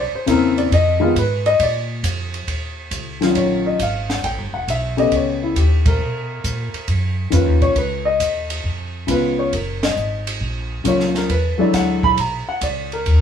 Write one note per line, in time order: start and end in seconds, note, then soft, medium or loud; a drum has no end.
0.00 0.11 C2 medium
0.00 0.13 D5 medium
0.13 0.28 C5 medium
0.13 muted upright bass stroke soft
0.26 0.70 E2 medium
0.26 0.71 C#3 medium
0.26 0.71 A#3 medium
0.26 0.71 C4 medium
0.26 0.71 E4 medium
0.26 kick soft
0.26 hi-hat pedal medium
0.26 ride medium
0.30 0.58 A#4 medium
0.58 0.71 D5 medium
0.58 ride soft
0.71 1.14 F2 medium
0.71 1.01 D#5 medium
0.71 kick soft
0.71 ride medium
1.00 1.13 D#3 medium
1.00 1.13 G#3 medium
1.00 1.14 B3 medium
1.00 1.14 F4 medium
1.00 1.15 G#4 medium
1.16 1.58 G#2 medium
1.16 1.46 B4 medium
1.16 kick soft
1.16 hi-hat pedal soft
1.16 ride medium
1.46 1.59 D#5 loud
1.46 ride soft
1.59 2.02 A#2 medium
1.59 1.80 D5 medium
1.59 kick soft
1.59 ride medium
2.03 2.46 F2 medium
2.03 kick soft
2.03 hi-hat pedal medium
2.03 ride medium
2.34 ride soft
2.47 2.90 D#2 medium
2.47 kick soft
2.47 ride medium
2.91 3.34 C#2 medium
2.91 kick soft
2.91 hi-hat pedal soft
2.91 ride medium
3.21 3.76 D#3 medium
3.21 3.76 F#3 medium
3.21 3.77 C#4 medium
3.21 3.77 F4 medium
3.21 snare soft
3.21 ride soft
3.35 3.78 A#1 medium
3.35 3.65 C#5 medium
3.35 kick soft
3.35 ride medium
3.66 3.79 D#5 medium
3.79 4.22 G#1 medium
3.79 4.10 F5 medium
3.79 kick soft
3.79 hi-hat pedal medium
3.79 ride medium
4.09 4.23 F#5 medium
4.09 snare soft
4.09 ride soft
4.23 4.38 A1 medium
4.23 4.53 G5 medium
4.23 kick soft
4.23 ride medium
4.38 4.52 G1 soft
4.53 4.66 E1 medium
4.53 4.67 F#5 medium
4.68 5.10 B1 medium
4.68 4.98 E5 medium
4.68 kick soft
4.68 hi-hat pedal soft
4.68 ride medium
4.97 5.52 C#3 medium
4.97 5.53 A3 medium
4.97 5.53 B3 medium
4.97 5.53 G4 medium
4.97 5.12 D#5 medium
4.97 ride soft
5.12 5.54 C#2 medium
5.12 5.42 C#5 medium
5.12 kick soft
5.12 ride medium
5.43 5.56 E4 medium
5.56 5.98 D#2 medium
5.56 5.85 G4 medium
5.56 kick soft
5.56 hi-hat pedal soft
5.56 ride medium
5.86 6.85 A#4 medium
5.86 kick medium
5.86 ride medium
5.99 6.42 B2 medium
6.44 6.72 A#2 medium
6.44 kick soft
6.44 hi-hat pedal soft
6.44 ride medium
6.74 muted upright bass stroke soft
6.74 ride soft
6.88 7.31 F#2 medium
6.88 kick soft
6.88 ride medium
7.30 7.46 F2 medium
7.30 7.75 D#3 medium
7.30 7.76 A#3 soft
7.30 7.76 C#4 soft
7.30 7.76 F4 medium
7.30 7.62 B4 medium
7.30 kick soft
7.30 hi-hat pedal medium
7.30 ride medium
7.46 7.60 D#2 soft
7.60 7.74 B1 medium
7.60 7.76 C#5 medium
7.60 kick soft
7.60 ride soft
7.75 8.18 C#2 medium
7.75 8.06 B4 medium
7.75 kick soft
7.75 ride medium
8.05 8.60 D#5 medium
8.20 8.63 D#2 medium
8.20 kick soft
8.20 hi-hat pedal medium
8.20 ride medium
8.50 ride medium
8.64 9.07 F2 medium
8.64 kick soft
9.07 9.51 C#2 medium
9.07 9.52 C#3 medium
9.07 9.52 G#3 soft
9.07 9.52 B3 medium
9.07 9.52 F4 medium
9.07 9.38 B4 medium
9.07 kick soft
9.07 hi-hat pedal soft
9.07 ride medium
9.39 9.52 C#5 medium
9.53 9.95 F#1 medium
9.53 9.82 A#4 soft
9.53 kick soft
9.53 ride medium
9.83 10.37 D#5 medium
9.83 snare medium
9.83 ride medium
9.96 10.39 G#1 medium
9.96 hi-hat pedal soft
10.27 ride medium
10.41 10.83 A#1 medium
10.41 kick soft
10.84 11.28 C#2 medium
10.84 11.28 C#3 soft
10.84 11.29 F#3 medium
10.84 11.29 A#3 soft
10.84 11.29 F4 medium
10.84 11.15 C#5 medium
10.84 kick soft
10.84 hi-hat pedal medium
10.84 ride medium
11.00 snare soft
11.15 11.29 A#4 medium
11.15 snare soft
11.15 ride soft
11.29 11.57 E2 medium
11.29 11.59 B4 medium
11.29 kick soft
11.29 ride medium
11.58 12.14 D3 medium
11.58 12.14 F#3 medium
11.58 12.14 G#3 medium
11.58 12.15 E4 medium
11.58 11.73 D5 medium
11.58 muted upright bass stroke soft
11.73 12.16 D2 medium
11.73 12.03 F#5 medium
11.73 kick soft
11.73 snare soft
11.73 hi-hat pedal medium
11.73 ride medium
12.03 12.17 B5 loud
12.03 kick soft
12.18 12.45 B1 medium
12.18 12.47 A#5 medium
12.18 kick soft
12.18 ride medium
12.48 12.62 F#5 medium
12.48 muted upright bass stroke soft
12.61 13.04 C#2 medium
12.61 12.91 D5 medium
12.61 kick soft
12.61 hi-hat pedal soft
12.61 ride medium
12.92 13.21 A#4 medium
12.92 ride soft
13.06 13.21 D#2 medium
13.06 kick soft
13.06 ride soft